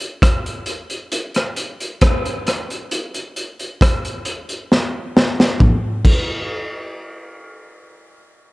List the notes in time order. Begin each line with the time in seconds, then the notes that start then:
0.00 closed hi-hat
0.22 kick, cross-stick, closed hi-hat
0.46 closed hi-hat
0.66 closed hi-hat
0.90 closed hi-hat
1.12 closed hi-hat
1.34 cross-stick, closed hi-hat
1.56 closed hi-hat
1.80 closed hi-hat
2.01 kick, cross-stick, closed hi-hat
2.25 closed hi-hat
2.47 cross-stick, closed hi-hat
2.70 closed hi-hat
2.91 closed hi-hat
3.14 closed hi-hat
3.36 closed hi-hat
3.59 closed hi-hat
3.81 kick, cross-stick, closed hi-hat
4.05 closed hi-hat
4.25 closed hi-hat
4.49 closed hi-hat
4.72 snare
5.17 snare
5.40 snare
5.60 kick, mid tom
6.05 kick, crash